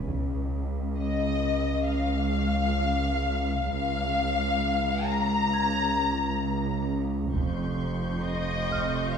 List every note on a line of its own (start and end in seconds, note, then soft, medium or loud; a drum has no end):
0.07 3.67 C#2 medium
0.07 3.70 C#2 medium
0.07 taiko soft
0.99 1.86 D#5 medium
1.89 3.71 F5 medium
3.70 7.30 C#2 medium
3.70 7.36 C#2 medium
3.70 7.30 C#2 medium
3.70 5.05 F5 medium
5.08 6.89 A#5 medium
5.53 8.22 G#6 soft
7.34 9.18 F1 medium
7.34 9.18 F2 medium
7.34 9.18 C6 soft
7.34 9.18 C#6 soft
7.34 9.18 G6 soft
7.34 taiko medium
8.24 9.12 D#5 medium
8.71 9.18 F5 soft
8.71 9.18 F6 soft
8.71 taiko soft